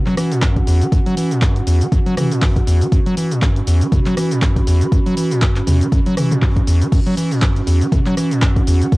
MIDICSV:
0, 0, Header, 1, 4, 480
1, 0, Start_track
1, 0, Tempo, 500000
1, 885, Time_signature, 4, 2, 24, 8
1, 8611, End_track
2, 0, Start_track
2, 0, Title_t, "Ambient pad"
2, 0, Program_c, 0, 92
2, 0, Note_on_c, 0, 61, 74
2, 0, Note_on_c, 0, 66, 91
2, 0, Note_on_c, 0, 78, 77
2, 3126, Note_on_c, 0, 83, 72
2, 3162, Note_off_c, 0, 78, 0
2, 6965, Note_on_c, 0, 78, 75
2, 7004, Note_off_c, 0, 83, 0
2, 8611, Note_off_c, 0, 61, 0
2, 8611, Note_off_c, 0, 66, 0
2, 8611, Note_off_c, 0, 78, 0
2, 8611, End_track
3, 0, Start_track
3, 0, Title_t, "Acid bass"
3, 0, Program_c, 1, 38
3, 60, Note_on_c, 1, 54, 108
3, 146, Note_off_c, 1, 54, 0
3, 164, Note_on_c, 1, 52, 76
3, 301, Note_on_c, 1, 46, 103
3, 315, Note_off_c, 1, 52, 0
3, 406, Note_on_c, 1, 42, 104
3, 420, Note_off_c, 1, 46, 0
3, 542, Note_on_c, 1, 44, 106
3, 556, Note_off_c, 1, 42, 0
3, 599, Note_off_c, 1, 44, 0
3, 645, Note_on_c, 1, 40, 104
3, 782, Note_on_c, 1, 54, 106
3, 796, Note_off_c, 1, 40, 0
3, 839, Note_off_c, 1, 54, 0
3, 885, Note_on_c, 1, 42, 89
3, 960, Note_off_c, 1, 42, 0
3, 1021, Note_on_c, 1, 54, 104
3, 1107, Note_off_c, 1, 54, 0
3, 1125, Note_on_c, 1, 52, 76
3, 1261, Note_on_c, 1, 46, 97
3, 1275, Note_off_c, 1, 52, 0
3, 1363, Note_on_c, 1, 42, 106
3, 1378, Note_off_c, 1, 46, 0
3, 1500, Note_on_c, 1, 44, 104
3, 1514, Note_off_c, 1, 42, 0
3, 1557, Note_off_c, 1, 44, 0
3, 1603, Note_on_c, 1, 40, 103
3, 1741, Note_on_c, 1, 54, 103
3, 1755, Note_off_c, 1, 40, 0
3, 1798, Note_off_c, 1, 54, 0
3, 1845, Note_on_c, 1, 42, 85
3, 1920, Note_off_c, 1, 42, 0
3, 1980, Note_on_c, 1, 54, 104
3, 2066, Note_off_c, 1, 54, 0
3, 2084, Note_on_c, 1, 52, 78
3, 2220, Note_on_c, 1, 46, 106
3, 2235, Note_off_c, 1, 52, 0
3, 2324, Note_on_c, 1, 42, 106
3, 2338, Note_off_c, 1, 46, 0
3, 2460, Note_on_c, 1, 44, 103
3, 2475, Note_off_c, 1, 42, 0
3, 2518, Note_off_c, 1, 44, 0
3, 2563, Note_on_c, 1, 40, 106
3, 2700, Note_on_c, 1, 54, 107
3, 2714, Note_off_c, 1, 40, 0
3, 2757, Note_off_c, 1, 54, 0
3, 2803, Note_on_c, 1, 42, 85
3, 2879, Note_off_c, 1, 42, 0
3, 2939, Note_on_c, 1, 54, 105
3, 3026, Note_off_c, 1, 54, 0
3, 3043, Note_on_c, 1, 52, 76
3, 3179, Note_on_c, 1, 46, 107
3, 3193, Note_off_c, 1, 52, 0
3, 3284, Note_on_c, 1, 42, 104
3, 3298, Note_off_c, 1, 46, 0
3, 3420, Note_on_c, 1, 44, 106
3, 3434, Note_off_c, 1, 42, 0
3, 3477, Note_off_c, 1, 44, 0
3, 3523, Note_on_c, 1, 40, 100
3, 3659, Note_on_c, 1, 54, 102
3, 3674, Note_off_c, 1, 40, 0
3, 3717, Note_off_c, 1, 54, 0
3, 3764, Note_on_c, 1, 42, 85
3, 3839, Note_off_c, 1, 42, 0
3, 3900, Note_on_c, 1, 54, 99
3, 3986, Note_off_c, 1, 54, 0
3, 4004, Note_on_c, 1, 52, 79
3, 4140, Note_on_c, 1, 46, 101
3, 4155, Note_off_c, 1, 52, 0
3, 4244, Note_on_c, 1, 42, 104
3, 4259, Note_off_c, 1, 46, 0
3, 4380, Note_on_c, 1, 44, 104
3, 4394, Note_off_c, 1, 42, 0
3, 4438, Note_off_c, 1, 44, 0
3, 4484, Note_on_c, 1, 40, 105
3, 4621, Note_on_c, 1, 54, 105
3, 4635, Note_off_c, 1, 40, 0
3, 4678, Note_off_c, 1, 54, 0
3, 4724, Note_on_c, 1, 42, 87
3, 4799, Note_off_c, 1, 42, 0
3, 4860, Note_on_c, 1, 54, 103
3, 4946, Note_off_c, 1, 54, 0
3, 4964, Note_on_c, 1, 52, 80
3, 5100, Note_on_c, 1, 46, 102
3, 5114, Note_off_c, 1, 52, 0
3, 5204, Note_on_c, 1, 42, 101
3, 5218, Note_off_c, 1, 46, 0
3, 5341, Note_on_c, 1, 44, 107
3, 5355, Note_off_c, 1, 42, 0
3, 5398, Note_off_c, 1, 44, 0
3, 5443, Note_on_c, 1, 40, 99
3, 5580, Note_on_c, 1, 54, 111
3, 5595, Note_off_c, 1, 40, 0
3, 5638, Note_off_c, 1, 54, 0
3, 5684, Note_on_c, 1, 42, 85
3, 5759, Note_off_c, 1, 42, 0
3, 5821, Note_on_c, 1, 54, 101
3, 5906, Note_off_c, 1, 54, 0
3, 5925, Note_on_c, 1, 52, 78
3, 6061, Note_on_c, 1, 46, 101
3, 6075, Note_off_c, 1, 52, 0
3, 6164, Note_on_c, 1, 42, 103
3, 6179, Note_off_c, 1, 46, 0
3, 6301, Note_on_c, 1, 44, 100
3, 6316, Note_off_c, 1, 42, 0
3, 6358, Note_off_c, 1, 44, 0
3, 6404, Note_on_c, 1, 40, 102
3, 6541, Note_on_c, 1, 54, 104
3, 6556, Note_off_c, 1, 40, 0
3, 6598, Note_off_c, 1, 54, 0
3, 6645, Note_on_c, 1, 42, 84
3, 6720, Note_off_c, 1, 42, 0
3, 6781, Note_on_c, 1, 54, 103
3, 6866, Note_off_c, 1, 54, 0
3, 6884, Note_on_c, 1, 52, 75
3, 7019, Note_on_c, 1, 46, 98
3, 7034, Note_off_c, 1, 52, 0
3, 7124, Note_on_c, 1, 42, 108
3, 7139, Note_off_c, 1, 46, 0
3, 7260, Note_on_c, 1, 44, 106
3, 7274, Note_off_c, 1, 42, 0
3, 7317, Note_off_c, 1, 44, 0
3, 7363, Note_on_c, 1, 40, 100
3, 7500, Note_on_c, 1, 54, 108
3, 7514, Note_off_c, 1, 40, 0
3, 7558, Note_off_c, 1, 54, 0
3, 7604, Note_on_c, 1, 42, 84
3, 7679, Note_off_c, 1, 42, 0
3, 7740, Note_on_c, 1, 54, 102
3, 7826, Note_off_c, 1, 54, 0
3, 7844, Note_on_c, 1, 52, 80
3, 7981, Note_on_c, 1, 46, 104
3, 7995, Note_off_c, 1, 52, 0
3, 8083, Note_on_c, 1, 42, 107
3, 8097, Note_off_c, 1, 46, 0
3, 8221, Note_on_c, 1, 44, 101
3, 8235, Note_off_c, 1, 42, 0
3, 8278, Note_off_c, 1, 44, 0
3, 8325, Note_on_c, 1, 40, 102
3, 8461, Note_on_c, 1, 54, 100
3, 8476, Note_off_c, 1, 40, 0
3, 8518, Note_off_c, 1, 54, 0
3, 8564, Note_on_c, 1, 42, 87
3, 8611, Note_off_c, 1, 42, 0
3, 8611, End_track
4, 0, Start_track
4, 0, Title_t, "Drums"
4, 58, Note_on_c, 9, 39, 35
4, 61, Note_on_c, 9, 42, 38
4, 154, Note_off_c, 9, 39, 0
4, 157, Note_off_c, 9, 42, 0
4, 165, Note_on_c, 9, 37, 66
4, 165, Note_on_c, 9, 46, 109
4, 170, Note_on_c, 9, 69, 79
4, 261, Note_off_c, 9, 37, 0
4, 261, Note_off_c, 9, 46, 0
4, 266, Note_off_c, 9, 69, 0
4, 302, Note_on_c, 9, 42, 40
4, 307, Note_on_c, 9, 69, 47
4, 398, Note_off_c, 9, 42, 0
4, 402, Note_on_c, 9, 39, 120
4, 403, Note_off_c, 9, 69, 0
4, 404, Note_on_c, 9, 36, 119
4, 405, Note_on_c, 9, 42, 65
4, 410, Note_on_c, 9, 69, 34
4, 498, Note_off_c, 9, 39, 0
4, 500, Note_off_c, 9, 36, 0
4, 501, Note_off_c, 9, 42, 0
4, 506, Note_off_c, 9, 69, 0
4, 540, Note_on_c, 9, 36, 60
4, 541, Note_on_c, 9, 42, 39
4, 636, Note_off_c, 9, 36, 0
4, 637, Note_off_c, 9, 42, 0
4, 644, Note_on_c, 9, 46, 105
4, 648, Note_on_c, 9, 69, 78
4, 740, Note_off_c, 9, 46, 0
4, 744, Note_off_c, 9, 69, 0
4, 781, Note_on_c, 9, 42, 39
4, 785, Note_on_c, 9, 69, 45
4, 877, Note_off_c, 9, 42, 0
4, 881, Note_off_c, 9, 69, 0
4, 884, Note_on_c, 9, 36, 116
4, 885, Note_on_c, 9, 42, 63
4, 890, Note_on_c, 9, 69, 32
4, 980, Note_off_c, 9, 36, 0
4, 981, Note_off_c, 9, 42, 0
4, 986, Note_off_c, 9, 69, 0
4, 1021, Note_on_c, 9, 42, 41
4, 1117, Note_off_c, 9, 42, 0
4, 1125, Note_on_c, 9, 46, 105
4, 1130, Note_on_c, 9, 69, 78
4, 1221, Note_off_c, 9, 46, 0
4, 1226, Note_off_c, 9, 69, 0
4, 1261, Note_on_c, 9, 42, 38
4, 1266, Note_on_c, 9, 69, 47
4, 1357, Note_off_c, 9, 42, 0
4, 1362, Note_off_c, 9, 69, 0
4, 1362, Note_on_c, 9, 39, 118
4, 1364, Note_on_c, 9, 36, 112
4, 1365, Note_on_c, 9, 42, 69
4, 1369, Note_on_c, 9, 69, 36
4, 1458, Note_off_c, 9, 39, 0
4, 1460, Note_off_c, 9, 36, 0
4, 1461, Note_off_c, 9, 42, 0
4, 1465, Note_off_c, 9, 69, 0
4, 1500, Note_on_c, 9, 42, 39
4, 1596, Note_off_c, 9, 42, 0
4, 1604, Note_on_c, 9, 46, 108
4, 1609, Note_on_c, 9, 69, 82
4, 1700, Note_off_c, 9, 46, 0
4, 1705, Note_off_c, 9, 69, 0
4, 1740, Note_on_c, 9, 42, 39
4, 1745, Note_on_c, 9, 69, 45
4, 1836, Note_off_c, 9, 42, 0
4, 1841, Note_off_c, 9, 69, 0
4, 1844, Note_on_c, 9, 36, 116
4, 1844, Note_on_c, 9, 42, 67
4, 1849, Note_on_c, 9, 69, 36
4, 1940, Note_off_c, 9, 36, 0
4, 1940, Note_off_c, 9, 42, 0
4, 1945, Note_off_c, 9, 69, 0
4, 1981, Note_on_c, 9, 42, 38
4, 2077, Note_off_c, 9, 42, 0
4, 2086, Note_on_c, 9, 37, 65
4, 2086, Note_on_c, 9, 46, 104
4, 2086, Note_on_c, 9, 47, 92
4, 2090, Note_on_c, 9, 69, 82
4, 2182, Note_off_c, 9, 37, 0
4, 2182, Note_off_c, 9, 46, 0
4, 2182, Note_off_c, 9, 47, 0
4, 2186, Note_off_c, 9, 69, 0
4, 2222, Note_on_c, 9, 42, 42
4, 2226, Note_on_c, 9, 69, 47
4, 2318, Note_off_c, 9, 42, 0
4, 2322, Note_off_c, 9, 69, 0
4, 2323, Note_on_c, 9, 36, 123
4, 2323, Note_on_c, 9, 39, 115
4, 2326, Note_on_c, 9, 46, 62
4, 2330, Note_on_c, 9, 69, 35
4, 2419, Note_off_c, 9, 36, 0
4, 2419, Note_off_c, 9, 39, 0
4, 2422, Note_off_c, 9, 46, 0
4, 2426, Note_off_c, 9, 69, 0
4, 2460, Note_on_c, 9, 36, 59
4, 2461, Note_on_c, 9, 42, 39
4, 2556, Note_off_c, 9, 36, 0
4, 2557, Note_off_c, 9, 42, 0
4, 2566, Note_on_c, 9, 46, 102
4, 2570, Note_on_c, 9, 69, 84
4, 2662, Note_off_c, 9, 46, 0
4, 2666, Note_off_c, 9, 69, 0
4, 2701, Note_on_c, 9, 42, 40
4, 2705, Note_on_c, 9, 69, 46
4, 2797, Note_off_c, 9, 42, 0
4, 2801, Note_off_c, 9, 69, 0
4, 2803, Note_on_c, 9, 36, 118
4, 2803, Note_on_c, 9, 42, 66
4, 2808, Note_on_c, 9, 69, 36
4, 2899, Note_off_c, 9, 36, 0
4, 2899, Note_off_c, 9, 42, 0
4, 2904, Note_off_c, 9, 69, 0
4, 2941, Note_on_c, 9, 42, 41
4, 3037, Note_off_c, 9, 42, 0
4, 3044, Note_on_c, 9, 46, 104
4, 3048, Note_on_c, 9, 69, 83
4, 3140, Note_off_c, 9, 46, 0
4, 3144, Note_off_c, 9, 69, 0
4, 3180, Note_on_c, 9, 42, 41
4, 3185, Note_on_c, 9, 69, 45
4, 3276, Note_off_c, 9, 42, 0
4, 3281, Note_off_c, 9, 69, 0
4, 3281, Note_on_c, 9, 39, 123
4, 3283, Note_on_c, 9, 36, 115
4, 3284, Note_on_c, 9, 42, 73
4, 3289, Note_on_c, 9, 69, 36
4, 3377, Note_off_c, 9, 39, 0
4, 3379, Note_off_c, 9, 36, 0
4, 3380, Note_off_c, 9, 42, 0
4, 3385, Note_off_c, 9, 69, 0
4, 3420, Note_on_c, 9, 42, 40
4, 3516, Note_off_c, 9, 42, 0
4, 3524, Note_on_c, 9, 46, 103
4, 3528, Note_on_c, 9, 69, 84
4, 3620, Note_off_c, 9, 46, 0
4, 3624, Note_off_c, 9, 69, 0
4, 3661, Note_on_c, 9, 42, 41
4, 3665, Note_on_c, 9, 69, 47
4, 3757, Note_off_c, 9, 42, 0
4, 3761, Note_off_c, 9, 69, 0
4, 3764, Note_on_c, 9, 36, 116
4, 3764, Note_on_c, 9, 42, 67
4, 3764, Note_on_c, 9, 47, 81
4, 3769, Note_on_c, 9, 69, 38
4, 3860, Note_off_c, 9, 36, 0
4, 3860, Note_off_c, 9, 42, 0
4, 3860, Note_off_c, 9, 47, 0
4, 3865, Note_off_c, 9, 69, 0
4, 3898, Note_on_c, 9, 39, 37
4, 3900, Note_on_c, 9, 42, 39
4, 3994, Note_off_c, 9, 39, 0
4, 3996, Note_off_c, 9, 42, 0
4, 4004, Note_on_c, 9, 37, 64
4, 4004, Note_on_c, 9, 46, 102
4, 4009, Note_on_c, 9, 69, 83
4, 4100, Note_off_c, 9, 37, 0
4, 4100, Note_off_c, 9, 46, 0
4, 4105, Note_off_c, 9, 69, 0
4, 4140, Note_on_c, 9, 42, 41
4, 4145, Note_on_c, 9, 69, 50
4, 4236, Note_off_c, 9, 42, 0
4, 4241, Note_off_c, 9, 69, 0
4, 4242, Note_on_c, 9, 39, 117
4, 4244, Note_on_c, 9, 36, 113
4, 4245, Note_on_c, 9, 42, 70
4, 4250, Note_on_c, 9, 69, 38
4, 4338, Note_off_c, 9, 39, 0
4, 4340, Note_off_c, 9, 36, 0
4, 4341, Note_off_c, 9, 42, 0
4, 4346, Note_off_c, 9, 69, 0
4, 4380, Note_on_c, 9, 36, 58
4, 4381, Note_on_c, 9, 42, 41
4, 4476, Note_off_c, 9, 36, 0
4, 4477, Note_off_c, 9, 42, 0
4, 4485, Note_on_c, 9, 46, 98
4, 4489, Note_on_c, 9, 69, 84
4, 4581, Note_off_c, 9, 46, 0
4, 4585, Note_off_c, 9, 69, 0
4, 4621, Note_on_c, 9, 42, 42
4, 4625, Note_on_c, 9, 69, 47
4, 4717, Note_off_c, 9, 42, 0
4, 4721, Note_off_c, 9, 69, 0
4, 4724, Note_on_c, 9, 36, 117
4, 4725, Note_on_c, 9, 42, 66
4, 4729, Note_on_c, 9, 69, 35
4, 4820, Note_off_c, 9, 36, 0
4, 4821, Note_off_c, 9, 42, 0
4, 4825, Note_off_c, 9, 69, 0
4, 4861, Note_on_c, 9, 42, 44
4, 4957, Note_off_c, 9, 42, 0
4, 4964, Note_on_c, 9, 46, 98
4, 4968, Note_on_c, 9, 69, 81
4, 5060, Note_off_c, 9, 46, 0
4, 5064, Note_off_c, 9, 69, 0
4, 5101, Note_on_c, 9, 42, 42
4, 5106, Note_on_c, 9, 69, 45
4, 5197, Note_off_c, 9, 42, 0
4, 5201, Note_on_c, 9, 39, 127
4, 5202, Note_off_c, 9, 69, 0
4, 5204, Note_on_c, 9, 36, 114
4, 5204, Note_on_c, 9, 42, 75
4, 5209, Note_on_c, 9, 69, 38
4, 5297, Note_off_c, 9, 39, 0
4, 5300, Note_off_c, 9, 36, 0
4, 5300, Note_off_c, 9, 42, 0
4, 5305, Note_off_c, 9, 69, 0
4, 5337, Note_on_c, 9, 39, 36
4, 5340, Note_on_c, 9, 42, 41
4, 5433, Note_off_c, 9, 39, 0
4, 5436, Note_off_c, 9, 42, 0
4, 5444, Note_on_c, 9, 46, 108
4, 5444, Note_on_c, 9, 47, 83
4, 5448, Note_on_c, 9, 69, 84
4, 5540, Note_off_c, 9, 46, 0
4, 5540, Note_off_c, 9, 47, 0
4, 5544, Note_off_c, 9, 69, 0
4, 5580, Note_on_c, 9, 42, 42
4, 5585, Note_on_c, 9, 69, 46
4, 5676, Note_off_c, 9, 42, 0
4, 5681, Note_off_c, 9, 69, 0
4, 5684, Note_on_c, 9, 36, 119
4, 5684, Note_on_c, 9, 42, 70
4, 5689, Note_on_c, 9, 69, 36
4, 5780, Note_off_c, 9, 36, 0
4, 5780, Note_off_c, 9, 42, 0
4, 5785, Note_off_c, 9, 69, 0
4, 5820, Note_on_c, 9, 42, 40
4, 5916, Note_off_c, 9, 42, 0
4, 5924, Note_on_c, 9, 37, 61
4, 5924, Note_on_c, 9, 46, 101
4, 5924, Note_on_c, 9, 47, 88
4, 5929, Note_on_c, 9, 69, 81
4, 6020, Note_off_c, 9, 37, 0
4, 6020, Note_off_c, 9, 46, 0
4, 6020, Note_off_c, 9, 47, 0
4, 6025, Note_off_c, 9, 69, 0
4, 6061, Note_on_c, 9, 42, 44
4, 6061, Note_on_c, 9, 47, 84
4, 6065, Note_on_c, 9, 69, 50
4, 6157, Note_off_c, 9, 42, 0
4, 6157, Note_off_c, 9, 47, 0
4, 6161, Note_off_c, 9, 69, 0
4, 6163, Note_on_c, 9, 39, 126
4, 6164, Note_on_c, 9, 36, 117
4, 6166, Note_on_c, 9, 46, 60
4, 6171, Note_on_c, 9, 69, 36
4, 6259, Note_off_c, 9, 39, 0
4, 6260, Note_off_c, 9, 36, 0
4, 6262, Note_off_c, 9, 46, 0
4, 6267, Note_off_c, 9, 69, 0
4, 6300, Note_on_c, 9, 36, 57
4, 6302, Note_on_c, 9, 42, 45
4, 6396, Note_off_c, 9, 36, 0
4, 6398, Note_off_c, 9, 42, 0
4, 6406, Note_on_c, 9, 46, 106
4, 6410, Note_on_c, 9, 69, 76
4, 6502, Note_off_c, 9, 46, 0
4, 6506, Note_off_c, 9, 69, 0
4, 6542, Note_on_c, 9, 42, 43
4, 6546, Note_on_c, 9, 69, 48
4, 6638, Note_off_c, 9, 42, 0
4, 6642, Note_off_c, 9, 69, 0
4, 6644, Note_on_c, 9, 36, 120
4, 6646, Note_on_c, 9, 42, 68
4, 6646, Note_on_c, 9, 49, 75
4, 6650, Note_on_c, 9, 69, 33
4, 6740, Note_off_c, 9, 36, 0
4, 6742, Note_off_c, 9, 42, 0
4, 6742, Note_off_c, 9, 49, 0
4, 6746, Note_off_c, 9, 69, 0
4, 6783, Note_on_c, 9, 42, 43
4, 6879, Note_off_c, 9, 42, 0
4, 6886, Note_on_c, 9, 46, 103
4, 6891, Note_on_c, 9, 69, 82
4, 6982, Note_off_c, 9, 46, 0
4, 6987, Note_off_c, 9, 69, 0
4, 7022, Note_on_c, 9, 42, 43
4, 7027, Note_on_c, 9, 69, 46
4, 7118, Note_off_c, 9, 42, 0
4, 7122, Note_on_c, 9, 39, 127
4, 7123, Note_off_c, 9, 69, 0
4, 7124, Note_on_c, 9, 36, 118
4, 7125, Note_on_c, 9, 42, 76
4, 7130, Note_on_c, 9, 69, 35
4, 7218, Note_off_c, 9, 39, 0
4, 7220, Note_off_c, 9, 36, 0
4, 7221, Note_off_c, 9, 42, 0
4, 7226, Note_off_c, 9, 69, 0
4, 7262, Note_on_c, 9, 42, 40
4, 7358, Note_off_c, 9, 42, 0
4, 7364, Note_on_c, 9, 46, 105
4, 7369, Note_on_c, 9, 69, 77
4, 7460, Note_off_c, 9, 46, 0
4, 7465, Note_off_c, 9, 69, 0
4, 7501, Note_on_c, 9, 42, 40
4, 7506, Note_on_c, 9, 69, 45
4, 7597, Note_off_c, 9, 42, 0
4, 7602, Note_off_c, 9, 69, 0
4, 7604, Note_on_c, 9, 36, 120
4, 7605, Note_on_c, 9, 42, 68
4, 7605, Note_on_c, 9, 47, 83
4, 7609, Note_on_c, 9, 69, 35
4, 7700, Note_off_c, 9, 36, 0
4, 7701, Note_off_c, 9, 42, 0
4, 7701, Note_off_c, 9, 47, 0
4, 7705, Note_off_c, 9, 69, 0
4, 7738, Note_on_c, 9, 39, 37
4, 7741, Note_on_c, 9, 42, 40
4, 7834, Note_off_c, 9, 39, 0
4, 7837, Note_off_c, 9, 42, 0
4, 7845, Note_on_c, 9, 37, 57
4, 7845, Note_on_c, 9, 46, 105
4, 7850, Note_on_c, 9, 69, 81
4, 7941, Note_off_c, 9, 37, 0
4, 7941, Note_off_c, 9, 46, 0
4, 7946, Note_off_c, 9, 69, 0
4, 7981, Note_on_c, 9, 42, 42
4, 7986, Note_on_c, 9, 69, 46
4, 8077, Note_off_c, 9, 42, 0
4, 8082, Note_off_c, 9, 69, 0
4, 8082, Note_on_c, 9, 39, 122
4, 8084, Note_on_c, 9, 36, 126
4, 8085, Note_on_c, 9, 42, 69
4, 8090, Note_on_c, 9, 69, 34
4, 8178, Note_off_c, 9, 39, 0
4, 8180, Note_off_c, 9, 36, 0
4, 8181, Note_off_c, 9, 42, 0
4, 8186, Note_off_c, 9, 69, 0
4, 8220, Note_on_c, 9, 36, 62
4, 8222, Note_on_c, 9, 42, 43
4, 8316, Note_off_c, 9, 36, 0
4, 8318, Note_off_c, 9, 42, 0
4, 8325, Note_on_c, 9, 46, 103
4, 8330, Note_on_c, 9, 69, 78
4, 8421, Note_off_c, 9, 46, 0
4, 8426, Note_off_c, 9, 69, 0
4, 8462, Note_on_c, 9, 42, 41
4, 8466, Note_on_c, 9, 69, 46
4, 8558, Note_off_c, 9, 42, 0
4, 8562, Note_off_c, 9, 69, 0
4, 8564, Note_on_c, 9, 36, 123
4, 8565, Note_on_c, 9, 42, 68
4, 8570, Note_on_c, 9, 69, 31
4, 8611, Note_off_c, 9, 36, 0
4, 8611, Note_off_c, 9, 42, 0
4, 8611, Note_off_c, 9, 69, 0
4, 8611, End_track
0, 0, End_of_file